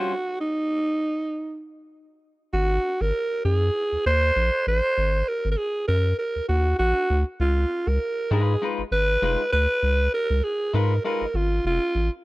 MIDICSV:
0, 0, Header, 1, 4, 480
1, 0, Start_track
1, 0, Tempo, 607903
1, 77, Time_signature, 4, 2, 24, 8
1, 9666, End_track
2, 0, Start_track
2, 0, Title_t, "Alto saxophone"
2, 0, Program_c, 0, 65
2, 0, Note_on_c, 0, 66, 93
2, 284, Note_off_c, 0, 66, 0
2, 319, Note_on_c, 0, 63, 90
2, 1249, Note_off_c, 0, 63, 0
2, 1999, Note_on_c, 0, 66, 104
2, 2380, Note_on_c, 0, 70, 97
2, 2392, Note_off_c, 0, 66, 0
2, 2721, Note_off_c, 0, 70, 0
2, 2726, Note_on_c, 0, 68, 101
2, 3173, Note_off_c, 0, 68, 0
2, 3209, Note_on_c, 0, 72, 126
2, 3655, Note_off_c, 0, 72, 0
2, 3693, Note_on_c, 0, 72, 123
2, 4168, Note_on_c, 0, 70, 101
2, 4180, Note_off_c, 0, 72, 0
2, 4349, Note_off_c, 0, 70, 0
2, 4354, Note_on_c, 0, 70, 80
2, 4401, Note_on_c, 0, 68, 93
2, 4412, Note_off_c, 0, 70, 0
2, 4634, Note_off_c, 0, 68, 0
2, 4639, Note_on_c, 0, 70, 101
2, 4864, Note_off_c, 0, 70, 0
2, 4885, Note_on_c, 0, 70, 96
2, 5108, Note_off_c, 0, 70, 0
2, 5121, Note_on_c, 0, 66, 100
2, 5345, Note_off_c, 0, 66, 0
2, 5360, Note_on_c, 0, 66, 121
2, 5710, Note_off_c, 0, 66, 0
2, 5848, Note_on_c, 0, 65, 100
2, 6220, Note_on_c, 0, 70, 93
2, 6232, Note_off_c, 0, 65, 0
2, 6570, Note_on_c, 0, 68, 97
2, 6582, Note_off_c, 0, 70, 0
2, 6836, Note_off_c, 0, 68, 0
2, 7044, Note_on_c, 0, 71, 111
2, 7492, Note_off_c, 0, 71, 0
2, 7520, Note_on_c, 0, 71, 110
2, 7970, Note_off_c, 0, 71, 0
2, 8008, Note_on_c, 0, 70, 101
2, 8244, Note_on_c, 0, 68, 94
2, 8256, Note_off_c, 0, 70, 0
2, 8484, Note_on_c, 0, 70, 95
2, 8496, Note_off_c, 0, 68, 0
2, 8720, Note_off_c, 0, 70, 0
2, 8725, Note_on_c, 0, 70, 96
2, 8968, Note_on_c, 0, 65, 95
2, 8980, Note_off_c, 0, 70, 0
2, 9205, Note_off_c, 0, 65, 0
2, 9211, Note_on_c, 0, 65, 105
2, 9554, Note_off_c, 0, 65, 0
2, 9666, End_track
3, 0, Start_track
3, 0, Title_t, "Clean electric guitar"
3, 0, Program_c, 1, 27
3, 0, Note_on_c, 1, 55, 70
3, 0, Note_on_c, 1, 61, 61
3, 0, Note_on_c, 1, 65, 73
3, 0, Note_on_c, 1, 72, 81
3, 92, Note_off_c, 1, 72, 0
3, 94, Note_off_c, 1, 65, 0
3, 97, Note_off_c, 1, 61, 0
3, 98, Note_off_c, 1, 55, 0
3, 6562, Note_on_c, 1, 56, 78
3, 6565, Note_on_c, 1, 63, 92
3, 6567, Note_on_c, 1, 65, 82
3, 6575, Note_on_c, 1, 71, 100
3, 6731, Note_off_c, 1, 56, 0
3, 6733, Note_off_c, 1, 63, 0
3, 6734, Note_off_c, 1, 65, 0
3, 6738, Note_off_c, 1, 71, 0
3, 6804, Note_on_c, 1, 56, 84
3, 6808, Note_on_c, 1, 63, 89
3, 6813, Note_on_c, 1, 65, 81
3, 6813, Note_on_c, 1, 71, 94
3, 6951, Note_off_c, 1, 56, 0
3, 6953, Note_off_c, 1, 63, 0
3, 6956, Note_off_c, 1, 65, 0
3, 6956, Note_off_c, 1, 71, 0
3, 7282, Note_on_c, 1, 56, 93
3, 7287, Note_on_c, 1, 63, 103
3, 7289, Note_on_c, 1, 65, 97
3, 7294, Note_on_c, 1, 71, 107
3, 7430, Note_off_c, 1, 56, 0
3, 7432, Note_off_c, 1, 63, 0
3, 7434, Note_off_c, 1, 65, 0
3, 7436, Note_off_c, 1, 71, 0
3, 8477, Note_on_c, 1, 56, 93
3, 8483, Note_on_c, 1, 63, 98
3, 8485, Note_on_c, 1, 65, 86
3, 8489, Note_on_c, 1, 71, 101
3, 8627, Note_off_c, 1, 56, 0
3, 8630, Note_off_c, 1, 63, 0
3, 8631, Note_off_c, 1, 65, 0
3, 8633, Note_off_c, 1, 71, 0
3, 8721, Note_on_c, 1, 56, 76
3, 8725, Note_on_c, 1, 63, 87
3, 8729, Note_on_c, 1, 65, 79
3, 8732, Note_on_c, 1, 71, 77
3, 8869, Note_off_c, 1, 56, 0
3, 8871, Note_off_c, 1, 63, 0
3, 8873, Note_off_c, 1, 65, 0
3, 8874, Note_off_c, 1, 71, 0
3, 9666, End_track
4, 0, Start_track
4, 0, Title_t, "Analog synth bass"
4, 0, Program_c, 2, 38
4, 2001, Note_on_c, 2, 32, 103
4, 2201, Note_off_c, 2, 32, 0
4, 2376, Note_on_c, 2, 32, 87
4, 2464, Note_off_c, 2, 32, 0
4, 2723, Note_on_c, 2, 42, 95
4, 2923, Note_off_c, 2, 42, 0
4, 3097, Note_on_c, 2, 39, 47
4, 3140, Note_off_c, 2, 39, 0
4, 3207, Note_on_c, 2, 39, 89
4, 3405, Note_off_c, 2, 39, 0
4, 3444, Note_on_c, 2, 34, 104
4, 3556, Note_off_c, 2, 34, 0
4, 3687, Note_on_c, 2, 33, 99
4, 3798, Note_off_c, 2, 33, 0
4, 3930, Note_on_c, 2, 32, 117
4, 4127, Note_off_c, 2, 32, 0
4, 4303, Note_on_c, 2, 32, 92
4, 4389, Note_off_c, 2, 32, 0
4, 4646, Note_on_c, 2, 42, 100
4, 4845, Note_off_c, 2, 42, 0
4, 5020, Note_on_c, 2, 39, 49
4, 5062, Note_off_c, 2, 39, 0
4, 5125, Note_on_c, 2, 39, 79
4, 5325, Note_off_c, 2, 39, 0
4, 5365, Note_on_c, 2, 34, 96
4, 5476, Note_off_c, 2, 34, 0
4, 5607, Note_on_c, 2, 38, 100
4, 5718, Note_off_c, 2, 38, 0
4, 5842, Note_on_c, 2, 37, 104
4, 6043, Note_off_c, 2, 37, 0
4, 6216, Note_on_c, 2, 37, 96
4, 6305, Note_off_c, 2, 37, 0
4, 6561, Note_on_c, 2, 44, 100
4, 6762, Note_off_c, 2, 44, 0
4, 6936, Note_on_c, 2, 32, 52
4, 6978, Note_off_c, 2, 32, 0
4, 7040, Note_on_c, 2, 32, 90
4, 7241, Note_off_c, 2, 32, 0
4, 7282, Note_on_c, 2, 29, 102
4, 7395, Note_off_c, 2, 29, 0
4, 7525, Note_on_c, 2, 38, 107
4, 7636, Note_off_c, 2, 38, 0
4, 7761, Note_on_c, 2, 37, 98
4, 7961, Note_off_c, 2, 37, 0
4, 8135, Note_on_c, 2, 37, 98
4, 8224, Note_off_c, 2, 37, 0
4, 8480, Note_on_c, 2, 44, 97
4, 8681, Note_off_c, 2, 44, 0
4, 8852, Note_on_c, 2, 32, 45
4, 8895, Note_off_c, 2, 32, 0
4, 8955, Note_on_c, 2, 32, 95
4, 9158, Note_off_c, 2, 32, 0
4, 9197, Note_on_c, 2, 29, 108
4, 9311, Note_off_c, 2, 29, 0
4, 9436, Note_on_c, 2, 33, 89
4, 9550, Note_off_c, 2, 33, 0
4, 9666, End_track
0, 0, End_of_file